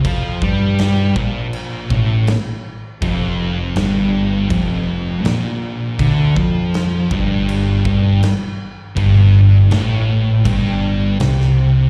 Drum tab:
CC |x---x---x---x---|x---x---x---x---|x---x---x---x---|x---x---x---x---|
SD |----o-------o---|----o-------o---|----o-------o---|----o-------oo--|
BD |o-o---o---o-----|o-------o-------|o-o---o---o-----|o-------o-------|